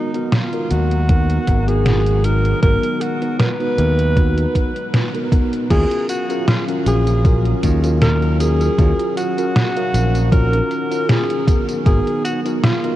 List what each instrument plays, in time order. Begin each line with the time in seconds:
Already playing: ambient pad D#3 F#3 G#3 B3 A#5, alto saxophone D#4
0.14 tine electric piano B3 D#4 F#4 A#4, closed hi-hat
0.32 alto saxophone F4, snare, closed hi-hat
0.52 tine electric piano B3 D#4 F#4 A#4, closed hi-hat
0.70 fingered electric bass D#2, alto saxophone F#4, closed hi-hat
0.91 closed hi-hat
1.08 tine electric piano B3 D#4 F#4 A#4, kick, closed hi-hat
1.30 closed hi-hat
1.47 fingered electric bass G#1, kick, closed hi-hat
1.67 tine electric piano B3 D#4 F#4 A#4, alto saxophone G#4, closed hi-hat
1.86 snare, closed hi-hat
2.06 closed hi-hat
2.24 tine electric piano B3 D#4 F#4, alto saxophone A#4, closed hi-hat
2.45 closed hi-hat
2.62 fingered electric bass G#1, tine electric piano B3 D#4 F#4 A#4, alto saxophone A#4, kick, closed hi-hat
2.84 closed hi-hat
3.01 alto saxophone F#4, closed hi-hat
3.21 tine electric piano B3 D#4 F#4 A#4, closed hi-hat
3.39 alto saxophone B4, snare, closed hi-hat
3.60 tine electric piano B3 D#4 F#4 B4, closed hi-hat
3.79 fingered electric bass D#2, closed hi-hat
3.99 closed hi-hat
4.16 tine electric piano B3 D#4 F#4 B4, kick, closed hi-hat
4.38 closed hi-hat
4.55 kick, closed hi-hat
4.76 closed hi-hat
4.94 snare, closed hi-hat
5.14 tine electric piano B3 D#4 F#4 A#4, closed hi-hat
5.31 tine electric piano B3 D#4 F#4 A#4, kick, closed hi-hat
5.53 closed hi-hat
5.70 fingered electric bass D#2, ambient pad D#3 F#3 C#4 A#4 F5, tine electric piano C#4 F4 F#4 A#4, alto saxophone G#4, kick, closed hi-hat, tambourine, crash
5.92 closed hi-hat
6.09 alto saxophone F#4, closed hi-hat, tambourine
6.29 tine electric piano C#4 F4 F#4 A#4, closed hi-hat, tambourine
6.48 alto saxophone F4, snare, closed hi-hat, tambourine
6.68 tine electric piano C#4 F4 F#4 A#4, closed hi-hat
6.86 fingered electric bass A#1, alto saxophone G#4, closed hi-hat, tambourine
7.07 closed hi-hat, tambourine
7.24 tine electric piano C#4 F4 F#4 A#4, kick, closed hi-hat, tambourine
7.45 closed hi-hat
7.63 fingered electric bass D#2, kick, closed hi-hat, tambourine
7.83 tine electric piano C#4 F4 F#4 A#4, closed hi-hat, tambourine
8.02 alto saxophone A#4, snare, closed hi-hat, tambourine
8.22 closed hi-hat
8.39 tine electric piano C#4 F4 F#4 A#4, alto saxophone G#4, closed hi-hat, tambourine
8.61 closed hi-hat, tambourine
8.78 fingered electric bass D#2, tine electric piano C#4 F4 F#4 A#4, ambient pad D#4, kick, closed hi-hat, tambourine
8.99 closed hi-hat
9.17 alto saxophone F#4, closed hi-hat, tambourine
9.37 tine electric piano C#4 F4 F#4 A#4, closed hi-hat, tambourine
9.56 snare, closed hi-hat, tambourine
9.76 tine electric piano C#4 F#4 A#4 F5, closed hi-hat
9.94 fingered electric bass A#1, closed hi-hat, tambourine
10.15 closed hi-hat, tambourine
10.32 tine electric piano C#4 F4 F#4 A#4, alto saxophone A#4, kick, closed hi-hat, tambourine
10.53 closed hi-hat
10.71 closed hi-hat, tambourine
10.91 tine electric piano C#4 F4 F#4 A#4, closed hi-hat, tambourine
11.09 alto saxophone G#4, snare, closed hi-hat, tambourine
11.30 closed hi-hat
11.47 ambient pad F#3 G#3 B3, tine electric piano B3 D#4 F#4 A#4, kick, closed hi-hat, tambourine
11.69 closed hi-hat, tambourine
11.85 fingered electric bass G#1, tine electric piano B3 D#4 F#4 A#4, alto saxophone G#4, kick, closed hi-hat, tambourine
12.07 closed hi-hat
12.24 alto saxophone F#4, closed hi-hat, tambourine
12.44 tine electric piano B3 D#4 F#4 A#4, closed hi-hat, tambourine
12.63 alto saxophone F4, snare, closed hi-hat, tambourine
12.83 tine electric piano B3 D#4 F#4 A#4, closed hi-hat